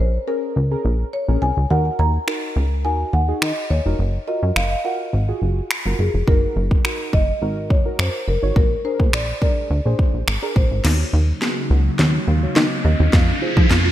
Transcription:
0.00 analog synth bass A#1, marimba C5
0.27 synth stab C#4 G#4 A#4, marimba A#4
0.56 analog synth bass C#2
0.71 synth stab C#4 G#4 A#4
0.85 analog synth bass A#1
1.13 marimba C#5
1.28 analog synth bass A#1, synth stab C#4 G#4 A#4
1.42 analog synth bass C2, marimba G#5
1.57 analog synth bass C#2
1.70 analog synth bass D#2, synth stab D#4 F#4 A#4, marimba F#5
1.99 analog synth bass D#2, marimba A#5
2.27 synth stab D#4 F#4 A#4, finger snap
2.56 analog synth bass C#2
2.84 analog synth bass D#2, synth stab D#4 F#4 A#4, marimba G#5
3.13 analog synth bass D#2, marimba F#5
3.28 synth stab D#4 F#4 G#4
3.42 analog synth bass D#3, marimba D#5, finger snap
3.70 analog synth bass D#2, marimba C#5
3.85 analog synth bass F1, synth stab D#4 F#4 A#4
3.99 analog synth bass F#1
4.27 synth stab F4 F#4 A#4, marimba D#5
4.43 analog synth bass F#2
4.56 analog synth bass F#1, marimba F5, finger snap
4.64 marimba D#5
4.71 marimba F5
4.85 synth stab F4 F#4 A#4, marimba F#5
5.13 analog synth bass G#1
5.28 synth stab F4 F#4 G#4
5.42 analog synth bass F#1
5.71 finger snap
5.85 analog synth bass F#1, synth stab F4 F#4 A#4
5.99 analog synth bass F#1, marimba G#4
6.14 analog synth bass F1
6.27 analog synth bass F#1, synth stab D#4 F#4 A#4, marimba A#4, kick
6.56 analog synth bass F#1
6.71 kick
6.84 synth stab D#4 F#4 A#4, finger snap
7.13 analog synth bass F#1, marimba D#5, kick
7.41 analog synth bass G#1, synth stab D#4 F#4 A#4
7.70 analog synth bass F#1, marimba C#5, kick
7.85 synth stab D#4 F#4 A#4
7.99 analog synth bass F#2, marimba C5, finger snap
8.28 analog synth bass F#1, marimba A#4
8.42 analog synth bass G#1, synth stab D#4 F#4 C#5
8.56 analog synth bass A#1, marimba A#4, kick
8.84 synth stab D4 G#4 A#4, marimba C5
9.00 analog synth bass A#2, kick
9.13 analog synth bass A#1, marimba D5, finger snap
9.42 synth stab D4 G#4 A#4, marimba D5, kick
9.70 analog synth bass D2
9.85 analog synth bass A#1, synth stab D4 G#4 C5
9.99 kick
10.14 analog synth bass A#1
10.28 analog synth bass G#1, finger snap
10.42 synth stab D4 G#4 A#4
10.56 analog synth bass A#1, marimba C5, kick
10.71 analog synth bass G#1
10.84 analog synth bass D#2, analog synth pad C#3 F#3 A#3 D#4, synth stab D#4 F#4 C#5, snare, crash, riser
11.13 analog synth bass D#2
11.41 synth stab D#4 F#4 G#4, snare
11.70 analog synth bass C#2, marimba F#5
11.99 analog synth bass D#2, synth stab D#4 F#4 C#5, snare
12.27 analog synth bass D#2, marimba F5
12.42 synth stab D#4 F#4 C#5
12.56 analog synth bass D#3, marimba D#5, snare
12.85 analog synth bass D#2, marimba D#5
13.00 analog synth bass D#2, synth stab D#4 F#4 D#5
13.13 analog synth bass F2, analog synth pad C3 F3 G#3 F4, marimba F5, kick, snare
13.42 synth stab F4 G#4 C5
13.57 analog synth bass F3, kick
13.70 analog synth bass F2, snare

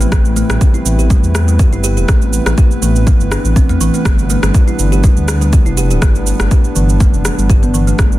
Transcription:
Already playing: analog synth pad A3 B3 C4 E4 B4
0.01 kalimba A3, shaker
0.12 detuned saw bass A1, kick, cross-stick, shaker
0.25 shaker
0.36 kalimba A3, shaker
0.50 detuned saw bass A1, kalimba G3, cross-stick, shaker
0.61 kalimba G4, kick, shaker
0.74 kalimba E4, shaker
0.86 detuned saw bass A1, shaker
0.99 kalimba G4, shaker
1.10 kalimba G3, kick, shaker
1.23 detuned saw bass E2, shaker
1.35 cross-stick, shaker
1.48 kalimba G3, shaker
1.59 kalimba G4, kick, shaker
1.72 detuned saw bass G1, kalimba E4, shaker
1.84 kalimba G4, shaker
1.97 detuned saw bass E1, kalimba G4, shaker
2.08 detuned saw bass A1, kalimba A3, kick, cross-stick, shaker
2.22 shaker
2.33 shaker
2.46 detuned saw bass A1, kalimba A3, cross-stick, shaker
2.58 kalimba G4, kick, shaker
2.71 shaker
2.82 detuned saw bass A1, kalimba E3, shaker
2.96 shaker
3.07 kalimba A3, kick, shaker
3.20 detuned saw bass G1, shaker
3.31 kalimba D4, cross-stick, shaker
3.45 detuned saw bass A1, shaker
3.56 kalimba C4, kick, shaker
3.69 detuned saw bass E2, kalimba A3, shaker
3.81 detuned saw bass A1, kalimba E3, shaker
3.94 kalimba A3, shaker
4.05 detuned saw bass G1, analog synth pad G3 D4, kalimba A3, kick, cross-stick, shaker
4.19 shaker
4.30 kalimba A3, shaker
4.43 detuned saw bass G1, kalimba G3, cross-stick, shaker
4.54 kalimba G4, kick, shaker
4.68 kalimba E4, shaker
4.79 detuned saw bass G1, shaker
4.92 kalimba G4, shaker
5.04 kalimba G3, kick, shaker
5.17 detuned saw bass D2, shaker
5.28 cross-stick, shaker
5.41 kalimba G3, shaker
5.53 kalimba G4, kick, shaker
5.66 detuned saw bass F1, kalimba E4, shaker
5.77 kalimba G4, shaker
5.91 detuned saw bass D1, kalimba G4, shaker
6.02 detuned saw bass G1, kalimba A3, kick, cross-stick, shaker
6.15 shaker
6.27 shaker
6.40 detuned saw bass G1, kalimba A3, cross-stick, shaker
6.51 kalimba G4, kick, shaker
6.65 shaker
6.76 detuned saw bass G1, kalimba E3, shaker
6.89 shaker
7.00 kalimba A3, kick, shaker
7.14 detuned saw bass F1, shaker
7.25 cross-stick, shaker
7.38 detuned saw bass G1, shaker
7.50 kalimba G4, kick, shaker
7.63 kalimba B3, shaker
7.74 kalimba E3, shaker
7.87 kalimba A3, shaker
7.99 detuned saw bass G1, kalimba A3, analog synth pad A4, kick, cross-stick, shaker
8.12 shaker

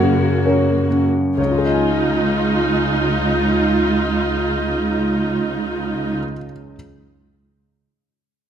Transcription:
Already playing: cello section F#2, grand piano F#2 C#4 A#4 C#5 F#5, viola section A#3 F#4
0.03 grand piano C#3
0.45 grand piano C#4 A#4 C#5
0.91 grand piano C#4
1.37 grand piano C#2 C#5, cello section C#2, viola section D#4 F4
1.45 grand piano C#3
1.51 grand piano F4
1.58 grand piano G#4
1.65 grand piano D#5
1.72 grand piano G#5

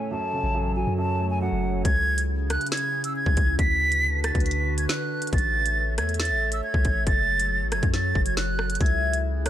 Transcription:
Already playing: grand piano A2 C#3 E3 A3 C#4, ambient pad A4 C#5
0.11 grand piano F#2, ambient pad F#3 F#4, flute A5
0.33 grand piano C#3
0.44 808-style bass A1
0.54 grand piano F#2
0.76 grand piano F#3, flute G#5
0.87 808-style bass F#2
0.98 grand piano F#2, flute A5
1.20 grand piano A3
1.30 flute G#5
1.41 grand piano F#2, flute F#5
1.52 808-style bass F#1
1.63 grand piano C#4
1.85 808-style bass C#2, ambient pad C#3 C#4 E4 G#4, flute G#6, kick, closed hi-hat
2.18 closed hi-hat
2.50 flute F#6, cross-stick, closed hi-hat
2.61 closed hi-hat
2.66 closed hi-hat
2.72 flute G#6, snare, closed hi-hat
2.77 closed hi-hat
3.04 flute E6, closed hi-hat
3.16 flute G#6
3.26 808-style bass C#2, kick
3.37 808-style bass C#2, kick, closed hi-hat
3.59 808-style bass D2, ambient pad D3 D4 F#4 B4, flute B6, kick, closed hi-hat
3.92 closed hi-hat
4.24 flute A6, cross-stick, closed hi-hat
4.35 808-style bass D2, kick, closed hi-hat
4.40 closed hi-hat
4.46 flute B6, closed hi-hat
4.51 closed hi-hat
4.78 flute G#6, closed hi-hat
4.89 flute F#6, snare
5.22 closed hi-hat
5.27 closed hi-hat
5.33 808-style bass A1, ambient pad A3 A4 C#5 E5, flute A6, kick, closed hi-hat
5.38 closed hi-hat
5.66 closed hi-hat
5.98 808-style bass E2, flute G#6, cross-stick, closed hi-hat
6.09 closed hi-hat
6.14 closed hi-hat
6.20 flute A6, snare, closed hi-hat
6.25 closed hi-hat
6.31 808-style bass A1
6.52 flute E6, closed hi-hat
6.64 flute G#6
6.74 808-style bass C#2, kick
6.85 808-style bass A1, kick, closed hi-hat
7.07 808-style bass F#1, ambient pad F#3 F#4, flute A6, kick, closed hi-hat
7.40 closed hi-hat
7.61 808-style bass A1
7.72 808-style bass F#1, flute G#6, cross-stick, closed hi-hat
7.83 808-style bass F#2, kick, closed hi-hat
7.94 flute A6, snare, closed hi-hat
8.15 808-style bass F#1, kick
8.26 flute G#6, closed hi-hat
8.37 flute F#6, snare
8.59 cross-stick
8.70 closed hi-hat
8.75 closed hi-hat
8.81 808-style bass C#2, ambient pad C#3 C#4 E4 G#4, soft synth lead E5, flute G#6, kick, closed hi-hat
8.86 closed hi-hat
9.14 closed hi-hat
9.46 soft synth lead C#5, flute F#6, cross-stick, closed hi-hat

